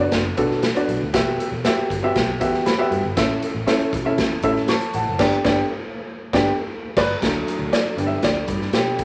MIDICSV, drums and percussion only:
0, 0, Header, 1, 2, 480
1, 0, Start_track
1, 0, Tempo, 506757
1, 1082, Time_signature, 4, 2, 24, 8
1, 8563, End_track
2, 0, Start_track
2, 0, Title_t, "Drums"
2, 110, Note_on_c, 9, 42, 67
2, 115, Note_on_c, 9, 36, 92
2, 115, Note_on_c, 9, 38, 119
2, 205, Note_off_c, 9, 42, 0
2, 210, Note_off_c, 9, 36, 0
2, 210, Note_off_c, 9, 38, 0
2, 353, Note_on_c, 9, 42, 72
2, 357, Note_on_c, 9, 36, 103
2, 448, Note_off_c, 9, 42, 0
2, 452, Note_off_c, 9, 36, 0
2, 482, Note_on_c, 9, 38, 28
2, 577, Note_off_c, 9, 38, 0
2, 592, Note_on_c, 9, 42, 73
2, 597, Note_on_c, 9, 38, 105
2, 687, Note_off_c, 9, 42, 0
2, 692, Note_off_c, 9, 38, 0
2, 722, Note_on_c, 9, 42, 50
2, 816, Note_off_c, 9, 42, 0
2, 841, Note_on_c, 9, 42, 66
2, 936, Note_off_c, 9, 42, 0
2, 1077, Note_on_c, 9, 42, 90
2, 1079, Note_on_c, 9, 36, 112
2, 1081, Note_on_c, 9, 38, 120
2, 1172, Note_off_c, 9, 42, 0
2, 1173, Note_off_c, 9, 36, 0
2, 1176, Note_off_c, 9, 38, 0
2, 1328, Note_on_c, 9, 42, 81
2, 1423, Note_off_c, 9, 42, 0
2, 1560, Note_on_c, 9, 38, 106
2, 1563, Note_on_c, 9, 42, 90
2, 1655, Note_off_c, 9, 38, 0
2, 1657, Note_off_c, 9, 42, 0
2, 1802, Note_on_c, 9, 36, 85
2, 1811, Note_on_c, 9, 42, 77
2, 1897, Note_off_c, 9, 36, 0
2, 1906, Note_off_c, 9, 42, 0
2, 2041, Note_on_c, 9, 42, 65
2, 2044, Note_on_c, 9, 36, 99
2, 2047, Note_on_c, 9, 38, 108
2, 2136, Note_off_c, 9, 42, 0
2, 2139, Note_off_c, 9, 36, 0
2, 2141, Note_off_c, 9, 38, 0
2, 2281, Note_on_c, 9, 42, 82
2, 2285, Note_on_c, 9, 36, 99
2, 2376, Note_off_c, 9, 42, 0
2, 2379, Note_off_c, 9, 36, 0
2, 2404, Note_on_c, 9, 38, 29
2, 2499, Note_off_c, 9, 38, 0
2, 2519, Note_on_c, 9, 42, 65
2, 2525, Note_on_c, 9, 38, 109
2, 2614, Note_off_c, 9, 42, 0
2, 2619, Note_off_c, 9, 38, 0
2, 2765, Note_on_c, 9, 42, 61
2, 2859, Note_off_c, 9, 42, 0
2, 3001, Note_on_c, 9, 42, 98
2, 3003, Note_on_c, 9, 36, 121
2, 3005, Note_on_c, 9, 38, 117
2, 3095, Note_off_c, 9, 42, 0
2, 3098, Note_off_c, 9, 36, 0
2, 3100, Note_off_c, 9, 38, 0
2, 3244, Note_on_c, 9, 42, 82
2, 3339, Note_off_c, 9, 42, 0
2, 3482, Note_on_c, 9, 38, 100
2, 3484, Note_on_c, 9, 42, 94
2, 3576, Note_off_c, 9, 38, 0
2, 3579, Note_off_c, 9, 42, 0
2, 3604, Note_on_c, 9, 42, 47
2, 3699, Note_off_c, 9, 42, 0
2, 3721, Note_on_c, 9, 36, 100
2, 3731, Note_on_c, 9, 42, 72
2, 3816, Note_off_c, 9, 36, 0
2, 3826, Note_off_c, 9, 42, 0
2, 3959, Note_on_c, 9, 42, 71
2, 3962, Note_on_c, 9, 36, 93
2, 3964, Note_on_c, 9, 38, 105
2, 4054, Note_off_c, 9, 42, 0
2, 4057, Note_off_c, 9, 36, 0
2, 4059, Note_off_c, 9, 38, 0
2, 4192, Note_on_c, 9, 42, 73
2, 4201, Note_on_c, 9, 36, 102
2, 4287, Note_off_c, 9, 42, 0
2, 4296, Note_off_c, 9, 36, 0
2, 4322, Note_on_c, 9, 38, 30
2, 4416, Note_off_c, 9, 38, 0
2, 4432, Note_on_c, 9, 42, 72
2, 4437, Note_on_c, 9, 38, 113
2, 4527, Note_off_c, 9, 42, 0
2, 4532, Note_off_c, 9, 38, 0
2, 4555, Note_on_c, 9, 42, 49
2, 4650, Note_off_c, 9, 42, 0
2, 4675, Note_on_c, 9, 42, 63
2, 4770, Note_off_c, 9, 42, 0
2, 4916, Note_on_c, 9, 49, 84
2, 4918, Note_on_c, 9, 36, 107
2, 4920, Note_on_c, 9, 38, 103
2, 5011, Note_off_c, 9, 49, 0
2, 5013, Note_off_c, 9, 36, 0
2, 5015, Note_off_c, 9, 38, 0
2, 5159, Note_on_c, 9, 36, 114
2, 5160, Note_on_c, 9, 38, 109
2, 5253, Note_off_c, 9, 36, 0
2, 5255, Note_off_c, 9, 38, 0
2, 5999, Note_on_c, 9, 36, 119
2, 6006, Note_on_c, 9, 38, 110
2, 6094, Note_off_c, 9, 36, 0
2, 6101, Note_off_c, 9, 38, 0
2, 6597, Note_on_c, 9, 49, 75
2, 6599, Note_on_c, 9, 36, 107
2, 6601, Note_on_c, 9, 38, 103
2, 6692, Note_off_c, 9, 49, 0
2, 6694, Note_off_c, 9, 36, 0
2, 6696, Note_off_c, 9, 38, 0
2, 6841, Note_on_c, 9, 36, 108
2, 6843, Note_on_c, 9, 42, 89
2, 6848, Note_on_c, 9, 38, 109
2, 6936, Note_off_c, 9, 36, 0
2, 6938, Note_off_c, 9, 42, 0
2, 6942, Note_off_c, 9, 38, 0
2, 7085, Note_on_c, 9, 42, 76
2, 7179, Note_off_c, 9, 42, 0
2, 7321, Note_on_c, 9, 38, 113
2, 7324, Note_on_c, 9, 42, 86
2, 7416, Note_off_c, 9, 38, 0
2, 7418, Note_off_c, 9, 42, 0
2, 7561, Note_on_c, 9, 42, 79
2, 7655, Note_off_c, 9, 42, 0
2, 7790, Note_on_c, 9, 42, 66
2, 7795, Note_on_c, 9, 38, 102
2, 7797, Note_on_c, 9, 36, 89
2, 7884, Note_off_c, 9, 42, 0
2, 7890, Note_off_c, 9, 38, 0
2, 7891, Note_off_c, 9, 36, 0
2, 8029, Note_on_c, 9, 42, 79
2, 8037, Note_on_c, 9, 36, 93
2, 8124, Note_off_c, 9, 42, 0
2, 8132, Note_off_c, 9, 36, 0
2, 8161, Note_on_c, 9, 38, 31
2, 8256, Note_off_c, 9, 38, 0
2, 8268, Note_on_c, 9, 42, 64
2, 8274, Note_on_c, 9, 38, 109
2, 8363, Note_off_c, 9, 42, 0
2, 8368, Note_off_c, 9, 38, 0
2, 8511, Note_on_c, 9, 42, 57
2, 8516, Note_on_c, 9, 36, 97
2, 8563, Note_off_c, 9, 36, 0
2, 8563, Note_off_c, 9, 42, 0
2, 8563, End_track
0, 0, End_of_file